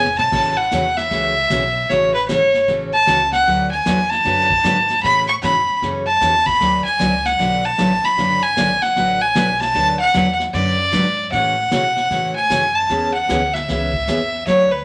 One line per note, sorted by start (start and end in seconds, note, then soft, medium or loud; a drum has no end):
0.00 0.17 E1 loud
0.00 0.16 G#5 loud
0.06 mid tom medium
0.18 0.59 A5 loud
0.18 mid tom medium
0.32 0.71 A1 medium
0.32 0.54 C#3 medium
0.32 0.54 E3 medium
0.32 0.55 A3 medium
0.32 0.55 C#4 medium
0.32 0.55 F#4 medium
0.32 brush sweep soft
0.32 kick medium
0.32 snare soft
0.32 crash medium
0.57 0.99 F#5 loud
0.71 1.10 E2 medium
0.71 0.84 C#3 medium
0.71 0.84 E3 medium
0.71 0.84 A3 medium
0.71 0.84 C#4 medium
0.71 0.84 F#4 medium
0.71 kick soft
0.71 snare medium
0.71 hi-hat pedal medium
0.97 1.91 E5 loud
0.97 snare soft
1.11 1.49 C#2 medium
1.11 1.33 C#3 medium
1.11 1.33 E3 medium
1.11 1.33 A3 medium
1.11 1.33 C#4 soft
1.11 1.33 F#4 medium
1.11 brush sweep soft
1.11 kick soft
1.11 snare soft
1.50 1.88 B1 medium
1.50 1.62 C#3 medium
1.50 1.62 E3 medium
1.50 1.62 A3 medium
1.50 1.62 C#4 medium
1.50 1.62 F#4 medium
1.50 kick soft
1.50 snare medium
1.50 hi-hat pedal medium
1.90 2.28 A1 medium
1.90 2.12 C#3 medium
1.90 2.12 E3 medium
1.90 2.12 A3 medium
1.90 2.12 C#4 medium
1.90 2.12 F#4 medium
1.90 2.14 C#5 loud
1.90 brush sweep medium
1.90 kick soft
1.90 snare soft
2.14 2.28 B4 medium
2.28 2.67 G#1 medium
2.28 2.40 C#3 medium
2.28 2.41 E3 medium
2.28 2.41 A3 medium
2.28 2.41 C#4 medium
2.28 2.41 F#4 medium
2.28 2.65 C#5 medium
2.28 kick soft
2.28 snare medium
2.28 hi-hat pedal medium
2.54 snare soft
2.68 3.06 A1 medium
2.68 2.90 C#3 medium
2.68 2.90 E3 medium
2.68 2.90 A3 medium
2.68 2.90 C#4 medium
2.68 2.90 F#4 medium
2.68 brush sweep medium
2.68 kick soft
2.68 snare soft
2.93 3.30 A5 loud
3.06 3.45 C#2 loud
3.06 3.18 C#3 medium
3.06 3.19 E3 medium
3.06 3.19 A3 medium
3.06 3.19 C#4 medium
3.06 3.19 F#4 loud
3.06 kick soft
3.06 snare medium
3.06 hi-hat pedal medium
3.32 3.69 F#5 loud
3.32 snare soft
3.46 3.85 D2 medium
3.46 3.68 D3 medium
3.46 3.69 F#3 medium
3.46 3.69 A3 medium
3.46 3.69 D4 medium
3.46 3.69 F#4 medium
3.46 3.69 B4 medium
3.46 brush sweep soft
3.46 kick soft
3.46 snare soft
3.72 4.11 G#5 loud
3.86 4.24 E2 medium
3.86 3.97 D3 medium
3.86 3.98 F#3 medium
3.86 3.98 A3 medium
3.86 3.98 D4 medium
3.86 3.98 F#4 medium
3.86 3.98 B4 medium
3.86 kick soft
3.86 snare medium
3.86 hi-hat pedal medium
4.10 5.03 A5 loud
4.10 snare soft
4.24 4.63 F#2 loud
4.24 4.46 D3 soft
4.24 4.47 F#3 medium
4.24 4.47 A3 medium
4.24 4.47 D4 medium
4.24 4.47 F#4 medium
4.24 4.47 B4 medium
4.24 brush sweep soft
4.24 kick soft
4.24 snare soft
4.50 kick medium
4.63 5.02 G#2 loud
4.63 4.75 D3 medium
4.63 4.76 F#3 medium
4.63 4.76 A3 medium
4.63 4.76 D4 medium
4.63 4.76 F#4 medium
4.63 4.76 B4 medium
4.63 kick soft
4.63 snare medium
4.63 hi-hat pedal medium
4.90 snare soft
5.03 5.42 A2 medium
5.03 5.25 C#3 medium
5.03 5.25 E3 medium
5.03 5.25 A3 medium
5.03 5.26 C#4 medium
5.03 5.26 F#4 medium
5.03 5.27 B5 loud
5.03 brush sweep medium
5.03 kick soft
5.03 snare soft
5.28 5.35 C#6 loud
5.42 5.66 G#2 medium
5.42 5.54 C#3 medium
5.42 5.54 E3 medium
5.42 5.54 A3 medium
5.42 5.55 C#4 medium
5.42 5.55 F#4 medium
5.42 5.79 B5 medium
5.42 kick soft
5.42 snare medium
5.42 hi-hat pedal medium
5.69 muted upright bass stroke soft
5.82 6.20 F#2 medium
5.82 6.04 C#3 medium
5.82 6.04 E3 medium
5.82 6.04 A3 medium
5.82 6.04 C#4 medium
5.82 6.05 F#4 medium
5.82 brush sweep soft
5.82 kick soft
5.82 snare soft
6.06 6.48 A5 loud
6.21 6.59 E2 medium
6.21 6.33 C#3 medium
6.21 6.33 E3 medium
6.21 6.33 A3 medium
6.21 6.33 C#4 medium
6.21 6.34 F#4 medium
6.21 kick soft
6.21 snare medium
6.21 hi-hat pedal medium
6.46 6.84 B5 loud
6.46 kick medium
6.46 snare soft
6.60 6.84 D2 medium
6.60 6.82 D3 medium
6.60 6.82 F#3 medium
6.60 6.83 A3 medium
6.60 6.83 D4 medium
6.60 6.83 F#4 medium
6.60 6.83 B4 medium
6.60 brush sweep soft
6.60 kick soft
6.60 snare soft
6.85 7.27 G#5 loud
6.85 muted upright bass stroke soft
6.99 7.38 C#2 medium
6.99 7.11 D3 medium
6.99 7.11 F#3 medium
6.99 7.11 A3 medium
6.99 7.11 D4 medium
6.99 7.11 F#4 medium
6.99 7.12 B4 medium
6.99 kick soft
6.99 snare medium
6.99 hi-hat pedal medium
7.25 7.66 F#5 loud
7.25 snare soft
7.39 7.77 B1 medium
7.39 7.61 D3 medium
7.39 7.61 F#3 medium
7.39 7.61 A3 medium
7.39 7.61 D4 medium
7.39 7.61 F#4 medium
7.39 7.61 B4 medium
7.39 brush sweep soft
7.39 kick soft
7.39 snare soft
7.65 8.06 A5 loud
7.78 8.02 A1 medium
7.78 7.90 D3 medium
7.78 7.90 F#3 medium
7.78 7.90 A3 medium
7.78 7.90 D4 medium
7.78 7.90 F#4 medium
7.78 7.90 B4 medium
7.78 kick soft
7.78 snare medium
7.78 hi-hat pedal medium
8.04 8.44 B5 loud
8.04 muted upright bass stroke soft
8.04 snare soft
8.17 8.56 F#1 medium
8.17 8.39 D3 medium
8.17 8.39 F#3 medium
8.17 8.40 A3 medium
8.17 8.40 D4 medium
8.17 8.40 F#4 medium
8.17 8.40 B4 medium
8.17 brush sweep soft
8.17 kick soft
8.17 snare soft
8.42 8.84 G#5 loud
8.57 8.80 G#1 medium
8.57 8.68 D3 medium
8.57 8.69 F#3 medium
8.57 8.69 A3 medium
8.57 8.69 D4 medium
8.57 8.69 F#4 medium
8.57 8.69 B4 medium
8.57 kick soft
8.57 snare medium
8.57 hi-hat pedal medium
8.82 9.22 F#5 loud
8.82 snare soft
8.96 9.34 A1 medium
8.96 9.18 D3 medium
8.96 9.18 F#3 medium
8.96 9.18 A3 medium
8.96 9.18 D4 medium
8.96 9.19 F#4 medium
8.96 9.19 B4 medium
8.96 brush sweep soft
8.96 kick soft
8.96 snare soft
9.21 9.62 G#5 loud
9.35 9.74 B1 medium
9.35 9.47 D3 medium
9.35 9.47 F#3 medium
9.35 9.47 A3 medium
9.35 9.47 D4 medium
9.35 9.48 F#4 medium
9.35 9.48 B4 medium
9.35 kick soft
9.35 snare medium
9.35 hi-hat pedal medium
9.60 9.99 A5 loud
9.60 snare soft
9.74 10.13 D2 medium
9.74 9.96 D3 medium
9.74 9.96 F#3 medium
9.74 9.96 A3 medium
9.74 9.97 D4 medium
9.74 9.97 F#4 medium
9.74 9.97 B4 medium
9.74 brush sweep soft
9.74 kick soft
9.74 snare soft
10.00 10.36 F#5 loud
10.14 10.52 E2 medium
10.14 10.25 D3 medium
10.14 10.26 F#3 medium
10.14 10.26 A3 medium
10.14 10.26 D4 medium
10.14 10.26 F#4 medium
10.14 10.26 B4 loud
10.14 kick soft
10.14 snare medium
10.14 hi-hat pedal medium
10.39 snare soft
10.53 10.92 F#2 loud
10.53 10.75 D3 medium
10.53 10.75 F#3 medium
10.53 10.75 A3 medium
10.53 10.76 D4 medium
10.53 10.76 F#4 medium
10.53 10.76 B4 medium
10.53 11.28 D5 loud
10.53 brush sweep soft
10.53 kick soft
10.53 snare soft
10.92 11.31 G#2 loud
10.92 11.04 D3 medium
10.92 11.04 F#3 medium
10.92 11.04 A3 medium
10.92 11.04 D4 medium
10.92 11.05 F#4 medium
10.92 11.05 B4 loud
10.92 kick soft
10.92 snare medium
10.92 hi-hat pedal medium
11.32 11.70 A2 medium
11.32 11.54 C#3 medium
11.32 11.54 E3 medium
11.32 11.54 A3 medium
11.32 11.54 C#4 medium
11.32 11.55 F#4 medium
11.32 12.32 F#5 loud
11.32 brush sweep soft
11.32 kick soft
11.32 snare soft
11.71 12.10 B2 medium
11.71 11.83 C#3 medium
11.71 11.83 E3 medium
11.71 11.83 A3 medium
11.71 11.83 C#4 medium
11.71 11.83 F#4 medium
11.71 kick soft
11.71 snare medium
11.71 hi-hat pedal soft
11.96 snare soft
12.10 12.49 A2 medium
12.10 12.33 C#3 medium
12.10 12.33 E3 medium
12.10 12.33 A3 medium
12.10 12.33 C#4 medium
12.10 12.33 F#4 medium
12.10 brush sweep soft
12.10 kick soft
12.10 snare soft
12.36 12.76 G#5 loud
12.50 12.88 F#2 medium
12.50 12.61 C#3 medium
12.50 12.62 E3 medium
12.50 12.62 A3 medium
12.50 12.62 C#4 medium
12.50 12.62 F#4 medium
12.50 kick soft
12.50 snare medium
12.50 hi-hat pedal medium
12.75 13.14 A5 medium
12.89 13.28 E2 medium
12.89 13.11 E3 medium
12.89 13.12 B3 medium
12.89 13.12 C#4 medium
12.89 13.12 G#4 medium
12.89 brush sweep soft
12.89 kick soft
12.89 snare soft
13.14 13.55 F#5 loud
13.29 13.67 D2 medium
13.29 13.40 E3 medium
13.29 13.41 B3 medium
13.29 13.41 C#4 medium
13.29 13.41 G#4 medium
13.29 kick soft
13.29 snare medium
13.29 hi-hat pedal medium
13.54 14.47 E5 loud
13.54 snare soft
13.68 14.06 C#2 medium
13.68 13.90 E3 medium
13.68 13.90 B3 medium
13.68 13.90 C#4 medium
13.68 13.91 G#4 medium
13.68 brush sweep medium
13.68 kick soft
13.68 snare soft
13.93 kick medium
14.07 14.46 E2 medium
14.07 14.19 E3 medium
14.07 14.19 B3 medium
14.07 14.19 C#4 medium
14.07 14.20 G#4 medium
14.07 kick soft
14.07 snare medium
14.07 hi-hat pedal soft
14.47 14.85 D2 medium
14.47 14.68 D3 medium
14.47 14.68 F#3 medium
14.47 14.69 A3 medium
14.47 14.69 D4 medium
14.47 14.69 F#4 medium
14.47 14.69 B4 medium
14.47 14.73 C#5 medium
14.47 brush sweep soft
14.47 kick soft
14.47 snare soft
14.71 14.85 B4 medium